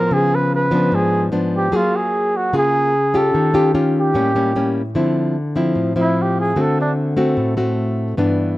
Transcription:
Already playing: nylon-string guitar F3 B3, flugelhorn A#4
0.11 nylon-string guitar C#3, flugelhorn G#4
0.35 flugelhorn B4
0.55 flugelhorn B4
0.71 nylon-string guitar F3 B3 D4
0.92 nylon-string guitar G#2, flugelhorn G#4
1.32 nylon-string guitar F3 B3 D4
1.57 flugelhorn G4
1.72 nylon-string guitar F#3 A#3 F4 G#4, flugelhorn F4
1.96 flugelhorn G#4
2.37 flugelhorn F#4
2.53 nylon-string guitar C#3 A#3 F4 G#4
2.58 flugelhorn G#4
3.14 nylon-string guitar C#4 F4 G4, flugelhorn A4
3.34 nylon-string guitar D#3
3.54 nylon-string guitar C#4 F4 G4
3.75 nylon-string guitar C#4 F4 G4
3.99 flugelhorn G4
4.14 nylon-string guitar A2 G3 A#3 C#4
4.35 nylon-string guitar G3 A#3 C#4
4.56 nylon-string guitar G3 A#3 C#4
4.95 nylon-string guitar D3 F3 C4 E4
5.56 nylon-string guitar F3 C4 E4
5.75 nylon-string guitar A2
5.96 nylon-string guitar F3 C4 E4
6.01 flugelhorn E4
6.22 flugelhorn G4
6.40 flugelhorn G#4
6.56 nylon-string guitar D3 A3 C4 F#4
6.61 flugelhorn A4
6.81 flugelhorn D4
7.17 nylon-string guitar A3 C4 F#4
7.37 nylon-string guitar A2
7.57 nylon-string guitar A3 C4 F#4
8.17 nylon-string guitar G2 E3 B3 D4

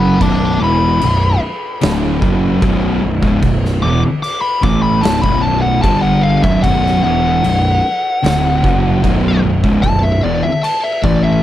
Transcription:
Already playing: picked electric bass F#1, distorted electric guitar F#2 C#3 F#3, lead electric guitar F#5 B5
0.20 picked electric bass B0, distorted electric guitar B1 F#2 B2, lead electric guitar A5 D6, kick, crash
0.60 picked electric bass E1, distorted electric guitar E2 B2 E3
0.64 lead electric guitar B5
1.01 picked electric bass B0, distorted electric guitar B1 F#2, crash
1.81 picked electric bass D1, distorted electric guitar D2 A2 D3, snare, crash
2.22 picked electric bass F#1, distorted electric guitar F#2 C#3 F#3, kick
2.62 picked electric bass B0, distorted electric guitar B1 F#2 B2, kick, crash
3.03 picked electric bass B0, distorted electric guitar B1 F#2
3.22 picked electric bass C#1, distorted electric guitar C#2 G#2, kick
3.42 picked electric bass B0, distorted electric guitar B1 F#2, kick, crash
3.65 snare
3.82 picked electric bass E1, distorted electric guitar E2 B2, lead electric guitar D6
4.23 lead electric guitar D6, crash
4.42 lead electric guitar B5
4.62 picked electric bass A1, distorted electric guitar A2 E3 A3, lead electric guitar D6, kick
4.83 lead electric guitar B5
5.01 picked electric bass C#1, distorted electric guitar C#2 G#2, lead electric guitar A5, crash
5.05 snare
5.22 picked electric bass B0, distorted electric guitar B1 F#2 B2, lead electric guitar B5, kick
5.41 lead electric guitar A5
5.61 lead electric guitar F#5
5.82 picked electric bass G1, distorted electric guitar G2 D3 G3, lead electric guitar A5, kick, crash
6.02 lead electric guitar F#5
6.22 lead electric guitar F5
6.43 picked electric bass B0, distorted electric guitar B1 F#2, lead electric guitar E5, kick
6.63 picked electric bass B0, distorted electric guitar B1 F#2 B2, lead electric guitar F#5, kick, crash
6.86 snare
7.04 picked electric bass E1, distorted electric guitar E2 B2 E3, lead electric guitar F#5
7.43 picked electric bass B0, distorted electric guitar B1 F#2, crash
8.23 picked electric bass D1, distorted electric guitar D2 A2 D3, snare, crash
8.64 picked electric bass F#1, distorted electric guitar F#2 C#3 F#3, kick
9.04 picked electric bass B0, distorted electric guitar B1 F#2 B2, kick, crash
9.43 picked electric bass B0, distorted electric guitar B1 F#2
9.64 picked electric bass C#1, distorted electric guitar C#2 G#2, kick
9.83 picked electric bass B0, distorted electric guitar B1 F#2, lead electric guitar A5, kick, crash
10.03 lead electric guitar E5
10.23 picked electric bass E1, distorted electric guitar E2 B2, lead electric guitar D5
10.44 lead electric guitar E5
10.63 lead electric guitar A5, crash
10.83 lead electric guitar E5
11.03 picked electric bass A1, distorted electric guitar A2 E3 A3, lead electric guitar D5, kick
11.24 lead electric guitar E5

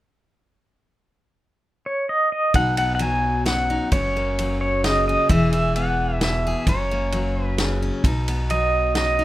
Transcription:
1.86 pedal steel guitar C#5
2.09 pedal steel guitar D#5
2.32 pedal steel guitar D#5
2.54 upright bass B1, steel-string acoustic guitar B2 D#4, pedal steel guitar F#5, kick, ride
2.77 steel-string acoustic guitar B3, pedal steel guitar F#5, ride
2.95 pedal steel guitar F#5
2.99 steel-string acoustic guitar F#3, pedal steel guitar G#5, ride
3.46 steel-string acoustic guitar F#2, pedal steel guitar F#5, snare, ride
3.70 steel-string acoustic guitar D#4
3.92 upright bass F#1, steel-string acoustic guitar F#2 C#4, pedal steel guitar C#5, kick, ride
4.17 steel-string acoustic guitar A#3
4.39 steel-string acoustic guitar F#3, ride
4.61 pedal steel guitar C#5
4.84 steel-string acoustic guitar C#3, pedal steel guitar D#5, snare, ride
5.08 steel-string acoustic guitar C#4, pedal steel guitar D#5
5.29 upright bass E1, steel-string acoustic guitar E3 G#4, pedal steel guitar E5, kick, ride
5.53 steel-string acoustic guitar E4, pedal steel guitar E5, ride
5.76 steel-string acoustic guitar B3, pedal steel guitar F#5, ride
6.21 steel-string acoustic guitar B2, pedal steel guitar E5, snare, ride
6.47 steel-string acoustic guitar G#4
6.67 upright bass F#1, steel-string acoustic guitar F#2 C#4, pedal steel guitar C#5, kick, ride
6.91 steel-string acoustic guitar A#3
7.12 steel-string acoustic guitar F#3, ride
7.45 pedal steel guitar B4
7.58 steel-string acoustic guitar C#3, snare, ride
7.83 steel-string acoustic guitar C#4
8.04 upright bass B1, steel-string acoustic guitar B2 D#4, kick, ride
8.28 steel-string acoustic guitar B3, ride
8.50 steel-string acoustic guitar F#3, pedal steel guitar D#5, ride
8.95 steel-string acoustic guitar F#2, pedal steel guitar D#5, snare, ride
9.19 steel-string acoustic guitar D#4

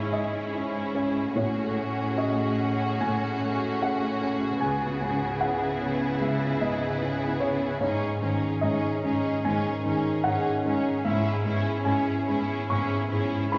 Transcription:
Already playing: cello section G#2, grand piano G#2 G#3 C#4 E4 G#4 E5 F#5 G#5, harp G#2 G#3 C#4 G#4, viola section C#4, violin section E4 G#4
0.12 grand piano G#3 D#5, harp C#4
0.53 grand piano C#4 E4 G#4, harp G#4
0.94 grand piano C#4 C#5, harp C#4
1.35 harp A2, grand piano A2 C#5, cello section A2, viola section C#4, violin section F#4 G#4
1.75 grand piano A3, harp C#4
2.16 grand piano C#4 F#4 G#4 D#5, harp G#4
2.58 grand piano C#4, harp C#4
3.00 grand piano A2 G#5, harp A2
3.41 grand piano A3, harp A3
3.82 grand piano C#4 F#4 G#4 F#5, harp G#4
4.21 grand piano C#4, harp C#4
4.61 grand piano C#2 G#5, harp C#3, cello section C#3, viola section B3, violin section G#4
5.01 grand piano G#2, harp B3
5.41 grand piano C#4 E4 G#4 F#5, violin section E4, harp G#4
5.81 harp B3, grand piano C#4
6.21 grand piano C#2 E5, harp G#3
6.61 grand piano G#2 D#5, harp B3
7.02 grand piano C#4 E4 G#4, harp G#4
7.40 harp B3, grand piano C#4 C#5
7.81 grand piano G#2 C#5, cello section G#2, harp G#2, viola section C#4, violin section D#4 G#4
8.21 cello section G#2, grand piano D#3, viola section C#4, harp C#4, violin section D#4 G#4
8.61 cello section G#2, grand piano C#4 D#4 G#4 D#5, viola section C#4, violin section D#4 G#4, harp G#4
9.03 cello section G#2, viola section C#4, grand piano C#4, harp C#4, violin section D#4 G#4
9.44 grand piano G#2 G#5, cello section G#2, harp D#3, viola section C#4, violin section D#4 G#4
9.85 cello section G#2, grand piano D#3, viola section C#4, harp C#4, violin section D#4 G#4
10.24 cello section G#2, viola section C#4, grand piano C#4 D#4 G#4 F#5, violin section D#4 G#4, harp G#4
10.65 cello section G#2, viola section C#4, harp C#4, grand piano C#4, violin section D#4 G#4
11.05 cello section G#2, grand piano G#2 E5, harp G#2, viola section C#4, violin section E4 G#4
11.44 cello section G#2, grand piano G#3, harp B3, viola section C#4, violin section E4 G#4
11.84 cello section G#2, viola section C#4, grand piano C#4 E4 G#4 G#5, violin section E4 G#4, harp G#4
12.27 cello section G#2, harp B3, viola section C#4, grand piano C#4, violin section E4 G#4
12.70 cello section G#2, grand piano G#2 C#6, harp G#3, viola section C#4, violin section E4 G#4
13.10 cello section G#2, grand piano G#3, harp B3, viola section C#4, violin section E4 G#4
13.52 cello section G#2, viola section C#4, grand piano C#4 E4 G#4 B5, violin section E4 G#4, harp G#4

